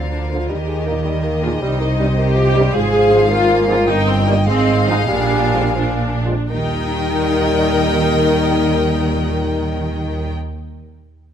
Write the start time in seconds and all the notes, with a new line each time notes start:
Already playing: D2 D3 F3 A#4 C5 D5 F5
0.12 D4
0.30 D3 F3 A#3 D4 F4
0.49 D#2 D#3 G3 G4 A#4 D#5
0.68 G#3
0.86 A#2 D#3 A#3 D#4
1.05 G3 A#4 D#5
1.24 A#3
1.42 A#2 D#3 G#3 A#3 D#4 F4
1.61 C2 C3 G3 D#4 C5 D#5
1.81 D#3
1.98 G2 G3 C4 D#4
2.18 D#3 G4
2.36 F3
2.54 G2 G3 C4 D#4
2.73 G#1 G#2 F3 G#4 F5
3.11 G#2 F3 C4 F4
3.30 A#3 F4
3.68 G#2 F3 C4 F4
3.87 G1 G2 D#4 A#4 D#5 G5
4.07 C4
4.27 G2 G3 A#3 D#4
4.46 G#1 G#2 G#3 C4 G#4 F5
4.88 G#2 F3 G#3 D#4
5.08 A#1 A#2 G3 D4 D5 F5 G#5
5.53 F2 F3 G#3 F4
5.75 F3 D4
6.25 F2 F3 G#3 F4
6.50 D#2 A#2 D#3 G3 A#3 D#4 G4 A#4 D#5 G5